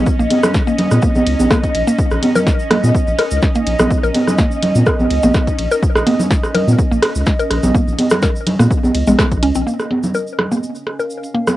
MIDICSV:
0, 0, Header, 1, 6, 480
1, 0, Start_track
1, 0, Key_signature, -5, "minor"
1, 0, Tempo, 480000
1, 66, Time_signature, 4, 2, 24, 8
1, 11569, End_track
2, 0, Start_track
2, 0, Title_t, "Ambient pad"
2, 0, Program_c, 0, 92
2, 0, Note_on_c, 0, 75, 88
2, 9666, Note_off_c, 0, 75, 0
2, 9667, Note_on_c, 0, 61, 74
2, 10606, Note_on_c, 0, 70, 81
2, 10689, Note_on_c, 0, 77, 71
2, 11569, Note_off_c, 0, 61, 0
2, 11569, Note_off_c, 0, 70, 0
2, 11569, Note_off_c, 0, 77, 0
2, 11569, End_track
3, 0, Start_track
3, 0, Title_t, "Synth drone"
3, 0, Program_c, 1, 95
3, 0, Note_on_c, 1, 61, 88
3, 9676, Note_off_c, 1, 61, 0
3, 11569, End_track
4, 0, Start_track
4, 0, Title_t, "Synth arpeggio sound"
4, 0, Program_c, 2, 84
4, 194, Note_on_c, 2, 58, 78
4, 232, Note_off_c, 2, 58, 0
4, 674, Note_on_c, 2, 58, 77
4, 730, Note_off_c, 2, 58, 0
4, 1025, Note_on_c, 2, 58, 83
4, 1068, Note_off_c, 2, 58, 0
4, 1505, Note_on_c, 2, 58, 86
4, 1570, Note_off_c, 2, 58, 0
4, 1874, Note_on_c, 2, 58, 77
4, 1911, Note_off_c, 2, 58, 0
4, 2354, Note_on_c, 2, 70, 79
4, 2391, Note_off_c, 2, 70, 0
4, 2706, Note_on_c, 2, 58, 79
4, 2749, Note_off_c, 2, 58, 0
4, 3185, Note_on_c, 2, 70, 78
4, 3228, Note_off_c, 2, 70, 0
4, 3554, Note_on_c, 2, 58, 77
4, 3592, Note_off_c, 2, 58, 0
4, 4034, Note_on_c, 2, 70, 78
4, 4071, Note_off_c, 2, 70, 0
4, 4386, Note_on_c, 2, 58, 84
4, 4429, Note_off_c, 2, 58, 0
4, 4865, Note_on_c, 2, 70, 85
4, 4908, Note_off_c, 2, 70, 0
4, 5234, Note_on_c, 2, 58, 78
4, 5271, Note_off_c, 2, 58, 0
4, 5715, Note_on_c, 2, 70, 80
4, 5752, Note_off_c, 2, 70, 0
4, 6066, Note_on_c, 2, 58, 78
4, 6109, Note_off_c, 2, 58, 0
4, 6546, Note_on_c, 2, 70, 79
4, 6588, Note_off_c, 2, 70, 0
4, 6914, Note_on_c, 2, 58, 77
4, 6952, Note_off_c, 2, 58, 0
4, 7394, Note_on_c, 2, 70, 75
4, 7431, Note_off_c, 2, 70, 0
4, 7746, Note_on_c, 2, 58, 82
4, 7789, Note_off_c, 2, 58, 0
4, 8226, Note_on_c, 2, 70, 82
4, 8269, Note_off_c, 2, 70, 0
4, 8595, Note_on_c, 2, 58, 80
4, 8632, Note_off_c, 2, 58, 0
4, 9075, Note_on_c, 2, 56, 80
4, 9112, Note_off_c, 2, 56, 0
4, 9427, Note_on_c, 2, 61, 79
4, 9452, Note_off_c, 2, 61, 0
4, 9555, Note_on_c, 2, 60, 78
4, 9577, Note_off_c, 2, 60, 0
4, 9667, Note_on_c, 2, 58, 78
4, 9709, Note_off_c, 2, 58, 0
4, 10146, Note_on_c, 2, 70, 81
4, 10189, Note_off_c, 2, 70, 0
4, 10515, Note_on_c, 2, 58, 74
4, 10552, Note_off_c, 2, 58, 0
4, 10995, Note_on_c, 2, 70, 74
4, 11032, Note_off_c, 2, 70, 0
4, 11346, Note_on_c, 2, 58, 73
4, 11389, Note_off_c, 2, 58, 0
4, 11569, End_track
5, 0, Start_track
5, 0, Title_t, "Sub bass"
5, 0, Program_c, 3, 38
5, 195, Note_on_c, 3, 34, 99
5, 269, Note_off_c, 3, 34, 0
5, 914, Note_on_c, 3, 46, 82
5, 989, Note_off_c, 3, 46, 0
5, 1154, Note_on_c, 3, 34, 93
5, 1229, Note_off_c, 3, 34, 0
5, 1266, Note_on_c, 3, 37, 98
5, 1346, Note_off_c, 3, 37, 0
5, 1395, Note_on_c, 3, 34, 101
5, 1469, Note_off_c, 3, 34, 0
5, 1746, Note_on_c, 3, 34, 86
5, 1826, Note_off_c, 3, 34, 0
5, 2115, Note_on_c, 3, 34, 102
5, 2189, Note_off_c, 3, 34, 0
5, 2834, Note_on_c, 3, 46, 84
5, 2909, Note_off_c, 3, 46, 0
5, 3074, Note_on_c, 3, 34, 99
5, 3149, Note_off_c, 3, 34, 0
5, 3314, Note_on_c, 3, 37, 83
5, 3388, Note_off_c, 3, 37, 0
5, 3666, Note_on_c, 3, 34, 107
5, 3746, Note_off_c, 3, 34, 0
5, 3794, Note_on_c, 3, 34, 101
5, 3869, Note_off_c, 3, 34, 0
5, 4034, Note_on_c, 3, 34, 103
5, 4109, Note_off_c, 3, 34, 0
5, 4754, Note_on_c, 3, 46, 83
5, 4829, Note_off_c, 3, 46, 0
5, 4994, Note_on_c, 3, 34, 92
5, 5069, Note_off_c, 3, 34, 0
5, 5105, Note_on_c, 3, 37, 100
5, 5186, Note_off_c, 3, 37, 0
5, 5234, Note_on_c, 3, 34, 98
5, 5309, Note_off_c, 3, 34, 0
5, 5586, Note_on_c, 3, 34, 86
5, 5666, Note_off_c, 3, 34, 0
5, 5954, Note_on_c, 3, 34, 105
5, 6029, Note_off_c, 3, 34, 0
5, 6674, Note_on_c, 3, 46, 84
5, 6749, Note_off_c, 3, 46, 0
5, 6915, Note_on_c, 3, 34, 100
5, 6989, Note_off_c, 3, 34, 0
5, 7154, Note_on_c, 3, 37, 82
5, 7229, Note_off_c, 3, 37, 0
5, 7506, Note_on_c, 3, 34, 108
5, 7586, Note_off_c, 3, 34, 0
5, 7635, Note_on_c, 3, 34, 98
5, 7709, Note_off_c, 3, 34, 0
5, 7875, Note_on_c, 3, 34, 102
5, 7949, Note_off_c, 3, 34, 0
5, 8596, Note_on_c, 3, 46, 85
5, 8669, Note_off_c, 3, 46, 0
5, 8835, Note_on_c, 3, 34, 90
5, 8909, Note_off_c, 3, 34, 0
5, 8947, Note_on_c, 3, 37, 102
5, 9026, Note_off_c, 3, 37, 0
5, 9075, Note_on_c, 3, 34, 102
5, 9149, Note_off_c, 3, 34, 0
5, 9315, Note_on_c, 3, 34, 87
5, 9427, Note_on_c, 3, 37, 103
5, 9442, Note_off_c, 3, 34, 0
5, 9506, Note_off_c, 3, 37, 0
5, 9555, Note_on_c, 3, 34, 89
5, 9629, Note_off_c, 3, 34, 0
5, 11569, End_track
6, 0, Start_track
6, 0, Title_t, "Drums"
6, 64, Note_on_c, 9, 82, 67
6, 66, Note_on_c, 9, 36, 123
6, 164, Note_off_c, 9, 82, 0
6, 166, Note_off_c, 9, 36, 0
6, 199, Note_on_c, 9, 82, 40
6, 299, Note_off_c, 9, 82, 0
6, 305, Note_on_c, 9, 42, 98
6, 305, Note_on_c, 9, 51, 84
6, 306, Note_on_c, 9, 63, 82
6, 405, Note_off_c, 9, 42, 0
6, 405, Note_off_c, 9, 51, 0
6, 406, Note_off_c, 9, 63, 0
6, 433, Note_on_c, 9, 82, 81
6, 434, Note_on_c, 9, 37, 78
6, 434, Note_on_c, 9, 64, 81
6, 533, Note_off_c, 9, 82, 0
6, 534, Note_off_c, 9, 37, 0
6, 534, Note_off_c, 9, 64, 0
6, 543, Note_on_c, 9, 82, 75
6, 546, Note_on_c, 9, 36, 127
6, 546, Note_on_c, 9, 38, 94
6, 643, Note_off_c, 9, 82, 0
6, 646, Note_off_c, 9, 36, 0
6, 646, Note_off_c, 9, 38, 0
6, 674, Note_on_c, 9, 82, 40
6, 774, Note_off_c, 9, 82, 0
6, 786, Note_on_c, 9, 42, 100
6, 786, Note_on_c, 9, 51, 73
6, 786, Note_on_c, 9, 64, 86
6, 886, Note_off_c, 9, 42, 0
6, 886, Note_off_c, 9, 51, 0
6, 886, Note_off_c, 9, 64, 0
6, 911, Note_on_c, 9, 82, 84
6, 914, Note_on_c, 9, 37, 38
6, 914, Note_on_c, 9, 63, 59
6, 1011, Note_off_c, 9, 82, 0
6, 1014, Note_off_c, 9, 37, 0
6, 1014, Note_off_c, 9, 63, 0
6, 1021, Note_on_c, 9, 82, 71
6, 1026, Note_on_c, 9, 36, 123
6, 1121, Note_off_c, 9, 82, 0
6, 1126, Note_off_c, 9, 36, 0
6, 1151, Note_on_c, 9, 82, 45
6, 1155, Note_on_c, 9, 63, 83
6, 1251, Note_off_c, 9, 82, 0
6, 1255, Note_off_c, 9, 63, 0
6, 1265, Note_on_c, 9, 42, 100
6, 1265, Note_on_c, 9, 51, 85
6, 1365, Note_off_c, 9, 42, 0
6, 1365, Note_off_c, 9, 51, 0
6, 1394, Note_on_c, 9, 63, 87
6, 1395, Note_on_c, 9, 82, 86
6, 1494, Note_off_c, 9, 63, 0
6, 1495, Note_off_c, 9, 82, 0
6, 1505, Note_on_c, 9, 82, 64
6, 1506, Note_on_c, 9, 36, 123
6, 1506, Note_on_c, 9, 37, 74
6, 1506, Note_on_c, 9, 38, 93
6, 1605, Note_off_c, 9, 82, 0
6, 1606, Note_off_c, 9, 36, 0
6, 1606, Note_off_c, 9, 37, 0
6, 1606, Note_off_c, 9, 38, 0
6, 1634, Note_on_c, 9, 36, 67
6, 1635, Note_on_c, 9, 42, 39
6, 1635, Note_on_c, 9, 82, 39
6, 1734, Note_off_c, 9, 36, 0
6, 1735, Note_off_c, 9, 42, 0
6, 1735, Note_off_c, 9, 82, 0
6, 1746, Note_on_c, 9, 42, 100
6, 1746, Note_on_c, 9, 51, 74
6, 1846, Note_off_c, 9, 42, 0
6, 1846, Note_off_c, 9, 51, 0
6, 1875, Note_on_c, 9, 82, 89
6, 1975, Note_off_c, 9, 82, 0
6, 1985, Note_on_c, 9, 82, 69
6, 1986, Note_on_c, 9, 36, 115
6, 2085, Note_off_c, 9, 82, 0
6, 2086, Note_off_c, 9, 36, 0
6, 2108, Note_on_c, 9, 82, 39
6, 2114, Note_on_c, 9, 37, 39
6, 2208, Note_off_c, 9, 82, 0
6, 2214, Note_off_c, 9, 37, 0
6, 2225, Note_on_c, 9, 63, 80
6, 2226, Note_on_c, 9, 42, 96
6, 2226, Note_on_c, 9, 51, 83
6, 2325, Note_off_c, 9, 63, 0
6, 2326, Note_off_c, 9, 42, 0
6, 2326, Note_off_c, 9, 51, 0
6, 2354, Note_on_c, 9, 64, 77
6, 2354, Note_on_c, 9, 82, 87
6, 2454, Note_off_c, 9, 64, 0
6, 2454, Note_off_c, 9, 82, 0
6, 2466, Note_on_c, 9, 36, 122
6, 2466, Note_on_c, 9, 38, 90
6, 2470, Note_on_c, 9, 82, 70
6, 2566, Note_off_c, 9, 36, 0
6, 2566, Note_off_c, 9, 38, 0
6, 2570, Note_off_c, 9, 82, 0
6, 2592, Note_on_c, 9, 82, 43
6, 2692, Note_off_c, 9, 82, 0
6, 2705, Note_on_c, 9, 37, 80
6, 2705, Note_on_c, 9, 64, 82
6, 2706, Note_on_c, 9, 42, 97
6, 2706, Note_on_c, 9, 51, 75
6, 2805, Note_off_c, 9, 37, 0
6, 2805, Note_off_c, 9, 64, 0
6, 2806, Note_off_c, 9, 42, 0
6, 2806, Note_off_c, 9, 51, 0
6, 2834, Note_on_c, 9, 63, 57
6, 2836, Note_on_c, 9, 82, 77
6, 2934, Note_off_c, 9, 63, 0
6, 2936, Note_off_c, 9, 82, 0
6, 2946, Note_on_c, 9, 36, 117
6, 2951, Note_on_c, 9, 82, 66
6, 3046, Note_off_c, 9, 36, 0
6, 3051, Note_off_c, 9, 82, 0
6, 3072, Note_on_c, 9, 82, 38
6, 3172, Note_off_c, 9, 82, 0
6, 3186, Note_on_c, 9, 37, 38
6, 3186, Note_on_c, 9, 42, 96
6, 3186, Note_on_c, 9, 51, 86
6, 3286, Note_off_c, 9, 37, 0
6, 3286, Note_off_c, 9, 42, 0
6, 3286, Note_off_c, 9, 51, 0
6, 3309, Note_on_c, 9, 82, 84
6, 3409, Note_off_c, 9, 82, 0
6, 3421, Note_on_c, 9, 82, 63
6, 3426, Note_on_c, 9, 36, 117
6, 3426, Note_on_c, 9, 38, 87
6, 3521, Note_off_c, 9, 82, 0
6, 3526, Note_off_c, 9, 36, 0
6, 3526, Note_off_c, 9, 38, 0
6, 3549, Note_on_c, 9, 82, 42
6, 3554, Note_on_c, 9, 42, 37
6, 3649, Note_off_c, 9, 82, 0
6, 3654, Note_off_c, 9, 42, 0
6, 3666, Note_on_c, 9, 42, 97
6, 3666, Note_on_c, 9, 51, 74
6, 3766, Note_off_c, 9, 42, 0
6, 3766, Note_off_c, 9, 51, 0
6, 3790, Note_on_c, 9, 82, 74
6, 3794, Note_on_c, 9, 37, 76
6, 3794, Note_on_c, 9, 63, 82
6, 3794, Note_on_c, 9, 64, 80
6, 3890, Note_off_c, 9, 82, 0
6, 3895, Note_off_c, 9, 37, 0
6, 3895, Note_off_c, 9, 63, 0
6, 3895, Note_off_c, 9, 64, 0
6, 3906, Note_on_c, 9, 36, 115
6, 3906, Note_on_c, 9, 82, 62
6, 4006, Note_off_c, 9, 36, 0
6, 4006, Note_off_c, 9, 82, 0
6, 4038, Note_on_c, 9, 82, 35
6, 4138, Note_off_c, 9, 82, 0
6, 4145, Note_on_c, 9, 42, 92
6, 4145, Note_on_c, 9, 51, 86
6, 4146, Note_on_c, 9, 63, 74
6, 4245, Note_off_c, 9, 42, 0
6, 4245, Note_off_c, 9, 51, 0
6, 4246, Note_off_c, 9, 63, 0
6, 4275, Note_on_c, 9, 37, 41
6, 4275, Note_on_c, 9, 64, 78
6, 4284, Note_on_c, 9, 82, 81
6, 4375, Note_off_c, 9, 37, 0
6, 4375, Note_off_c, 9, 64, 0
6, 4382, Note_off_c, 9, 82, 0
6, 4382, Note_on_c, 9, 82, 63
6, 4386, Note_on_c, 9, 36, 117
6, 4386, Note_on_c, 9, 38, 87
6, 4482, Note_off_c, 9, 82, 0
6, 4486, Note_off_c, 9, 36, 0
6, 4486, Note_off_c, 9, 38, 0
6, 4513, Note_on_c, 9, 82, 42
6, 4613, Note_off_c, 9, 82, 0
6, 4626, Note_on_c, 9, 42, 91
6, 4626, Note_on_c, 9, 51, 76
6, 4627, Note_on_c, 9, 64, 82
6, 4726, Note_off_c, 9, 42, 0
6, 4726, Note_off_c, 9, 51, 0
6, 4727, Note_off_c, 9, 64, 0
6, 4753, Note_on_c, 9, 82, 71
6, 4755, Note_on_c, 9, 63, 55
6, 4853, Note_off_c, 9, 82, 0
6, 4855, Note_off_c, 9, 63, 0
6, 4862, Note_on_c, 9, 82, 59
6, 4866, Note_on_c, 9, 36, 115
6, 4866, Note_on_c, 9, 37, 80
6, 4962, Note_off_c, 9, 82, 0
6, 4966, Note_off_c, 9, 36, 0
6, 4966, Note_off_c, 9, 37, 0
6, 4995, Note_on_c, 9, 63, 77
6, 4997, Note_on_c, 9, 82, 38
6, 5095, Note_off_c, 9, 63, 0
6, 5097, Note_off_c, 9, 82, 0
6, 5106, Note_on_c, 9, 42, 94
6, 5106, Note_on_c, 9, 51, 89
6, 5206, Note_off_c, 9, 42, 0
6, 5206, Note_off_c, 9, 51, 0
6, 5230, Note_on_c, 9, 82, 78
6, 5234, Note_on_c, 9, 63, 80
6, 5329, Note_off_c, 9, 82, 0
6, 5334, Note_off_c, 9, 63, 0
6, 5342, Note_on_c, 9, 82, 63
6, 5346, Note_on_c, 9, 36, 113
6, 5346, Note_on_c, 9, 37, 39
6, 5346, Note_on_c, 9, 38, 88
6, 5442, Note_off_c, 9, 82, 0
6, 5446, Note_off_c, 9, 36, 0
6, 5446, Note_off_c, 9, 37, 0
6, 5446, Note_off_c, 9, 38, 0
6, 5474, Note_on_c, 9, 36, 61
6, 5474, Note_on_c, 9, 42, 37
6, 5478, Note_on_c, 9, 82, 39
6, 5574, Note_off_c, 9, 36, 0
6, 5574, Note_off_c, 9, 42, 0
6, 5578, Note_off_c, 9, 82, 0
6, 5586, Note_on_c, 9, 42, 94
6, 5586, Note_on_c, 9, 51, 75
6, 5686, Note_off_c, 9, 42, 0
6, 5686, Note_off_c, 9, 51, 0
6, 5713, Note_on_c, 9, 82, 81
6, 5813, Note_off_c, 9, 82, 0
6, 5826, Note_on_c, 9, 36, 114
6, 5830, Note_on_c, 9, 82, 67
6, 5926, Note_off_c, 9, 36, 0
6, 5930, Note_off_c, 9, 82, 0
6, 5954, Note_on_c, 9, 37, 84
6, 5961, Note_on_c, 9, 82, 39
6, 6054, Note_off_c, 9, 37, 0
6, 6061, Note_off_c, 9, 82, 0
6, 6065, Note_on_c, 9, 63, 75
6, 6066, Note_on_c, 9, 42, 94
6, 6066, Note_on_c, 9, 51, 90
6, 6165, Note_off_c, 9, 63, 0
6, 6166, Note_off_c, 9, 42, 0
6, 6166, Note_off_c, 9, 51, 0
6, 6194, Note_on_c, 9, 64, 81
6, 6197, Note_on_c, 9, 82, 83
6, 6294, Note_off_c, 9, 64, 0
6, 6297, Note_off_c, 9, 82, 0
6, 6306, Note_on_c, 9, 36, 116
6, 6306, Note_on_c, 9, 38, 93
6, 6306, Note_on_c, 9, 82, 71
6, 6406, Note_off_c, 9, 36, 0
6, 6406, Note_off_c, 9, 38, 0
6, 6406, Note_off_c, 9, 82, 0
6, 6434, Note_on_c, 9, 37, 42
6, 6436, Note_on_c, 9, 82, 39
6, 6534, Note_off_c, 9, 37, 0
6, 6536, Note_off_c, 9, 82, 0
6, 6546, Note_on_c, 9, 42, 91
6, 6546, Note_on_c, 9, 51, 79
6, 6546, Note_on_c, 9, 64, 84
6, 6645, Note_off_c, 9, 64, 0
6, 6646, Note_off_c, 9, 42, 0
6, 6646, Note_off_c, 9, 51, 0
6, 6674, Note_on_c, 9, 63, 55
6, 6681, Note_on_c, 9, 82, 71
6, 6774, Note_off_c, 9, 63, 0
6, 6781, Note_off_c, 9, 82, 0
6, 6786, Note_on_c, 9, 36, 114
6, 6787, Note_on_c, 9, 82, 70
6, 6886, Note_off_c, 9, 36, 0
6, 6887, Note_off_c, 9, 82, 0
6, 6921, Note_on_c, 9, 82, 41
6, 7021, Note_off_c, 9, 82, 0
6, 7024, Note_on_c, 9, 37, 82
6, 7026, Note_on_c, 9, 42, 91
6, 7026, Note_on_c, 9, 51, 91
6, 7124, Note_off_c, 9, 37, 0
6, 7126, Note_off_c, 9, 42, 0
6, 7126, Note_off_c, 9, 51, 0
6, 7150, Note_on_c, 9, 82, 79
6, 7250, Note_off_c, 9, 82, 0
6, 7261, Note_on_c, 9, 82, 59
6, 7266, Note_on_c, 9, 36, 110
6, 7266, Note_on_c, 9, 38, 92
6, 7361, Note_off_c, 9, 82, 0
6, 7366, Note_off_c, 9, 36, 0
6, 7366, Note_off_c, 9, 38, 0
6, 7395, Note_on_c, 9, 42, 37
6, 7396, Note_on_c, 9, 82, 37
6, 7495, Note_off_c, 9, 42, 0
6, 7496, Note_off_c, 9, 82, 0
6, 7505, Note_on_c, 9, 37, 41
6, 7507, Note_on_c, 9, 42, 91
6, 7507, Note_on_c, 9, 51, 80
6, 7605, Note_off_c, 9, 37, 0
6, 7607, Note_off_c, 9, 42, 0
6, 7607, Note_off_c, 9, 51, 0
6, 7631, Note_on_c, 9, 82, 76
6, 7633, Note_on_c, 9, 63, 78
6, 7633, Note_on_c, 9, 64, 86
6, 7731, Note_off_c, 9, 82, 0
6, 7733, Note_off_c, 9, 63, 0
6, 7733, Note_off_c, 9, 64, 0
6, 7746, Note_on_c, 9, 36, 114
6, 7752, Note_on_c, 9, 82, 61
6, 7846, Note_off_c, 9, 36, 0
6, 7852, Note_off_c, 9, 82, 0
6, 7879, Note_on_c, 9, 82, 37
6, 7979, Note_off_c, 9, 82, 0
6, 7986, Note_on_c, 9, 42, 94
6, 7986, Note_on_c, 9, 51, 91
6, 7986, Note_on_c, 9, 63, 75
6, 8086, Note_off_c, 9, 42, 0
6, 8086, Note_off_c, 9, 51, 0
6, 8086, Note_off_c, 9, 63, 0
6, 8101, Note_on_c, 9, 82, 79
6, 8114, Note_on_c, 9, 37, 84
6, 8114, Note_on_c, 9, 64, 84
6, 8115, Note_on_c, 9, 42, 37
6, 8201, Note_off_c, 9, 82, 0
6, 8214, Note_off_c, 9, 37, 0
6, 8214, Note_off_c, 9, 64, 0
6, 8215, Note_off_c, 9, 42, 0
6, 8223, Note_on_c, 9, 82, 70
6, 8226, Note_on_c, 9, 36, 115
6, 8227, Note_on_c, 9, 38, 97
6, 8323, Note_off_c, 9, 82, 0
6, 8326, Note_off_c, 9, 36, 0
6, 8327, Note_off_c, 9, 38, 0
6, 8358, Note_on_c, 9, 82, 42
6, 8458, Note_off_c, 9, 82, 0
6, 8466, Note_on_c, 9, 64, 89
6, 8467, Note_on_c, 9, 42, 94
6, 8467, Note_on_c, 9, 51, 84
6, 8566, Note_off_c, 9, 64, 0
6, 8567, Note_off_c, 9, 42, 0
6, 8567, Note_off_c, 9, 51, 0
6, 8595, Note_on_c, 9, 37, 42
6, 8595, Note_on_c, 9, 63, 55
6, 8599, Note_on_c, 9, 82, 72
6, 8695, Note_off_c, 9, 37, 0
6, 8695, Note_off_c, 9, 63, 0
6, 8699, Note_off_c, 9, 82, 0
6, 8707, Note_on_c, 9, 36, 119
6, 8712, Note_on_c, 9, 82, 61
6, 8807, Note_off_c, 9, 36, 0
6, 8812, Note_off_c, 9, 82, 0
6, 8834, Note_on_c, 9, 63, 78
6, 8845, Note_on_c, 9, 82, 40
6, 8934, Note_off_c, 9, 63, 0
6, 8945, Note_off_c, 9, 82, 0
6, 8946, Note_on_c, 9, 42, 92
6, 8946, Note_on_c, 9, 51, 93
6, 9046, Note_off_c, 9, 42, 0
6, 9046, Note_off_c, 9, 51, 0
6, 9070, Note_on_c, 9, 82, 79
6, 9074, Note_on_c, 9, 63, 81
6, 9170, Note_off_c, 9, 82, 0
6, 9174, Note_off_c, 9, 63, 0
6, 9186, Note_on_c, 9, 36, 118
6, 9186, Note_on_c, 9, 37, 83
6, 9186, Note_on_c, 9, 38, 96
6, 9192, Note_on_c, 9, 82, 65
6, 9286, Note_off_c, 9, 36, 0
6, 9286, Note_off_c, 9, 37, 0
6, 9286, Note_off_c, 9, 38, 0
6, 9292, Note_off_c, 9, 82, 0
6, 9314, Note_on_c, 9, 82, 37
6, 9315, Note_on_c, 9, 36, 64
6, 9315, Note_on_c, 9, 42, 38
6, 9414, Note_off_c, 9, 82, 0
6, 9415, Note_off_c, 9, 36, 0
6, 9415, Note_off_c, 9, 42, 0
6, 9426, Note_on_c, 9, 42, 95
6, 9426, Note_on_c, 9, 51, 81
6, 9526, Note_off_c, 9, 42, 0
6, 9526, Note_off_c, 9, 51, 0
6, 9548, Note_on_c, 9, 82, 84
6, 9648, Note_off_c, 9, 82, 0
6, 9673, Note_on_c, 9, 82, 58
6, 9773, Note_off_c, 9, 82, 0
6, 9793, Note_on_c, 9, 82, 37
6, 9795, Note_on_c, 9, 37, 39
6, 9893, Note_off_c, 9, 82, 0
6, 9895, Note_off_c, 9, 37, 0
6, 9906, Note_on_c, 9, 42, 84
6, 9906, Note_on_c, 9, 63, 71
6, 10006, Note_off_c, 9, 42, 0
6, 10006, Note_off_c, 9, 63, 0
6, 10031, Note_on_c, 9, 82, 74
6, 10035, Note_on_c, 9, 64, 77
6, 10131, Note_off_c, 9, 82, 0
6, 10135, Note_off_c, 9, 64, 0
6, 10143, Note_on_c, 9, 82, 65
6, 10243, Note_off_c, 9, 82, 0
6, 10271, Note_on_c, 9, 82, 34
6, 10371, Note_off_c, 9, 82, 0
6, 10386, Note_on_c, 9, 37, 77
6, 10386, Note_on_c, 9, 42, 86
6, 10386, Note_on_c, 9, 64, 82
6, 10486, Note_off_c, 9, 37, 0
6, 10486, Note_off_c, 9, 42, 0
6, 10486, Note_off_c, 9, 64, 0
6, 10514, Note_on_c, 9, 63, 50
6, 10516, Note_on_c, 9, 82, 67
6, 10614, Note_off_c, 9, 63, 0
6, 10616, Note_off_c, 9, 82, 0
6, 10632, Note_on_c, 9, 82, 58
6, 10732, Note_off_c, 9, 82, 0
6, 10750, Note_on_c, 9, 82, 39
6, 10849, Note_off_c, 9, 82, 0
6, 10866, Note_on_c, 9, 37, 38
6, 10866, Note_on_c, 9, 42, 88
6, 10966, Note_off_c, 9, 37, 0
6, 10966, Note_off_c, 9, 42, 0
6, 10998, Note_on_c, 9, 82, 80
6, 11098, Note_off_c, 9, 82, 0
6, 11099, Note_on_c, 9, 82, 64
6, 11199, Note_off_c, 9, 82, 0
6, 11235, Note_on_c, 9, 42, 34
6, 11237, Note_on_c, 9, 82, 37
6, 11335, Note_off_c, 9, 42, 0
6, 11337, Note_off_c, 9, 82, 0
6, 11346, Note_on_c, 9, 42, 87
6, 11446, Note_off_c, 9, 42, 0
6, 11473, Note_on_c, 9, 82, 79
6, 11475, Note_on_c, 9, 37, 79
6, 11475, Note_on_c, 9, 63, 76
6, 11475, Note_on_c, 9, 64, 82
6, 11569, Note_off_c, 9, 37, 0
6, 11569, Note_off_c, 9, 63, 0
6, 11569, Note_off_c, 9, 64, 0
6, 11569, Note_off_c, 9, 82, 0
6, 11569, End_track
0, 0, End_of_file